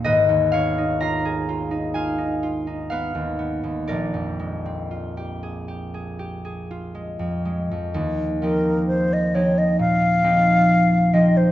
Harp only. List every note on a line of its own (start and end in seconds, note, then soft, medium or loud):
0.00 0.77 D#4 medium
0.00 1.33 G#5 medium
0.04 3.93 G#1 medium
0.04 2.90 B4 medium
0.04 3.93 D#5 medium
0.29 3.13 D#2 medium
0.52 2.90 B3 soft
0.52 3.93 C#5 medium
0.52 1.01 F5 loud
0.78 1.70 D#4 soft
1.01 1.47 F4 medium
1.01 1.94 F5 medium
1.01 2.61 A#5 medium
1.25 5.15 G#4 medium
1.49 1.94 F4 medium
1.71 2.17 D#4 soft
1.94 2.42 F4 soft
1.94 2.89 F5 medium
1.94 5.84 G#5 medium
2.18 2.66 D#4 soft
2.43 4.90 F4 soft
2.67 3.93 D#4 soft
2.90 3.38 B3 medium
2.90 3.93 B4 medium
2.90 6.80 F5 medium
3.15 3.62 D#2 soft
3.39 3.93 B3 soft
3.63 3.93 D#2 soft
3.87 7.79 A#1 medium
3.87 7.78 A#4 medium
3.87 7.77 D5 medium
4.14 7.18 F2 soft
4.39 6.93 G#3 soft
4.66 8.41 C4 soft
4.91 6.69 F4 soft
5.17 5.67 G4 soft
5.43 5.93 G#4 soft
5.68 6.18 G4 soft
5.94 6.44 G#4 soft
6.19 8.42 G4 soft
6.45 7.99 G#4 soft
6.71 10.61 F4 soft
6.95 7.44 G#3 soft
7.19 7.70 F2 soft
7.45 7.98 G#3 soft
7.71 7.99 F2 soft
7.94 11.52 D#2 medium
8.42 9.33 F3 soft
8.42 9.34 C4 soft
8.42 9.34 D#4 soft
8.42 9.34 G4 medium
9.34 10.22 F3 soft
9.34 10.22 C4 soft
9.34 10.23 D#4 soft
9.34 10.23 G4 soft
9.79 11.52 A#2 soft
10.23 11.12 F3 soft
10.23 11.13 C4 soft
10.23 11.13 D#4 soft
10.23 11.13 G4 soft
11.13 11.52 F3 soft
11.13 11.52 C4 soft
11.13 11.52 D#4 soft
11.13 11.52 G4 soft